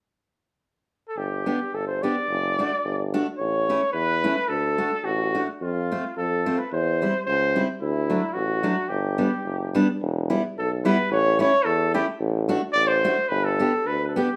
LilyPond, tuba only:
\new Staff \with { instrumentName = "Tuba" } { \clef bass \time 2/4 \key g \major \tempo 4 = 109 r2 | g,,4 g,,4 | fis,,4 g,,4 | a,,4 e,4 |
d,4 a,,4 | f,4 f,4 | e,4 cis,4 | d,4 a,,4 |
g,,4 fis,,4 | \key e \minor e,,4 b,,4 | a,,4 e,4 | a,,4 a,,4 |
g,,4 d,4 | }